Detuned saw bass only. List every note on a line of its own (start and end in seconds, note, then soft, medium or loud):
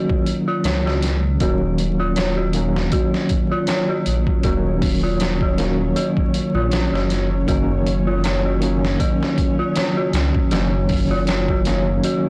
0.65 1.37 C#2 medium
1.41 2.89 D#1 medium
4.07 4.25 A#1 medium
4.44 5.93 D#1 loud
6.54 6.88 A#1 medium
6.92 7.45 F#1 medium
7.48 8.97 F#1 medium
10.13 10.32 C#2 medium
10.51 12.00 F#1 loud